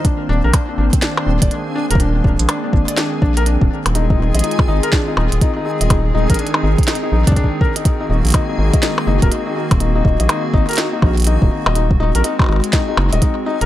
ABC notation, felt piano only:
X:1
M:4/4
L:1/16
Q:"Swing 16ths" 1/4=123
K:Bbphr
V:1 name="Felt piano"
=D z D B D D D z D D D =d D z D B | =D D D z D D D =d D z D B D D D z | E E E e E z E B =D E E z E E E e | E z E B =D E E z E E E D D z B E |
E E E z E E E e E z E B E E E z | E E z e E z E B E E E z E E E e | E z E B E E E z E E E e E z E B |]